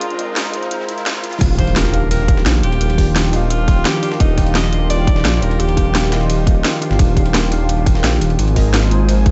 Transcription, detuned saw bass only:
1.41 D#1
2.46 A#1
2.63 D#1
2.81 D#1
4.20 D#1
5.25 A#1
5.42 D#1
5.60 D#1
6.91 G1
6.99 D#1
8.04 A#1
8.21 D#1
8.39 G#1

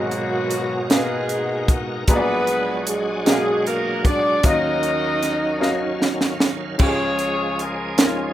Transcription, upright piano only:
Already playing: G#1 G#2 B2 F#4 G#4 A#4 D#5
0.90 A#3 F#4 G#4 A#4 F5
0.96 B3
2.08 A#1 A#2 B3 F#4 G#4 B4 A#5
2.15 D5
3.25 B2 F#4 G#4 A#4 F5
4.43 D#2 D#3 C#4 F#4 A#4 D#5 F5
5.60 C#4 F#4 A#4 D#5 F5
6.78 C#2 C#3 C#4 F4 G4
6.86 G#4
7.98 C#4 D#4 A#4
8.05 F4

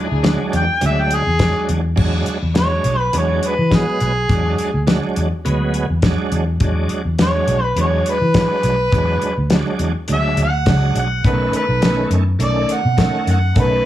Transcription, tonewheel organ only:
0.23 F#3 G#3 D4
0.81 F#3 G#3 D4
1.40 F#3 G#3 D4
1.96 F#3 G#3 D4
2.54 F#3 G#3 D4
3.13 F#3 G#3 D4
3.70 F#3 G#3 B3
4.29 F#3 G#3 D4
4.87 F#3 G#3 D4
5.45 F#3 G#3 B3
6.03 F#3 G#3 D4
6.61 F#3 G#3 D4
7.19 F#3 G#3 D4
7.77 F#3 G#3 D4
8.35 F#3 G#3 D4
8.92 F#3 G#3 D4
9.51 F#3 G#3 D4
10.08 F#3 G#3 D4
10.66 F#3 G#3 D4
11.24 D#3 A3 C#4
11.82 D#3 A3 C#4
12.39 D#3 A3 C#4
12.97 D#3 A3 C#4
13.56 D#3 A3 C#4

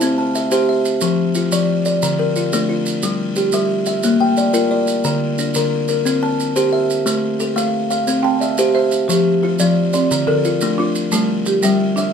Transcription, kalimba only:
Already playing: E5 A5
0.02 C4
0.18 A5
0.35 E5
0.51 G4 C5
0.69 E5
1.02 F3
1.36 F4
1.52 F3 D5
1.86 D5
2.03 D3
2.19 A#4
2.36 F4
2.53 A3 D4
2.69 F4
3.03 G3
3.37 G4
3.54 G3 E5
3.87 E5
4.04 A#3
4.21 G5
4.38 D5
4.54 F4 A#4
4.71 D5
5.05 D3
5.39 D4
5.56 D3 A#4
5.89 A#4
6.05 C4
6.23 A5
6.56 G4 C5
6.72 E5
7.06 A3
7.40 A4
7.56 A3 F5
7.91 F5
8.08 C4
8.24 A5
8.41 E5
8.59 G4 C5
8.75 E5
9.09 F3
9.43 F4
9.60 F3 D5
9.93 D5
10.11 D3
10.28 A#4
10.45 F4
10.62 A3 D4
10.79 F4
11.13 G3
11.64 G3 E5
11.98 E5

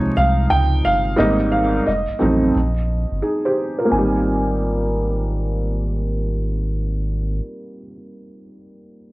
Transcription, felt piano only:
Already playing: C3 F3 G#3 D#4
1.16 G#2 G3 A#3 C4 D#4
2.19 F2 F#3 A3 C4 D#4
3.22 D#4 G#4
3.45 G4 C5
3.79 F4 A#4
3.85 A#3
3.89 C4
3.94 D#4
3.98 G3

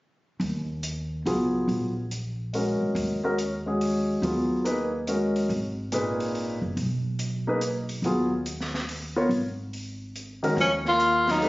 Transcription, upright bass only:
0.40 D#2
1.25 C#2
1.68 A#1
2.80 muted upright bass stroke
2.95 D#2
4.22 D#2
5.49 G#1
6.62 F#1
6.77 B1
8.02 D#2
9.29 G#1
10.56 D#2

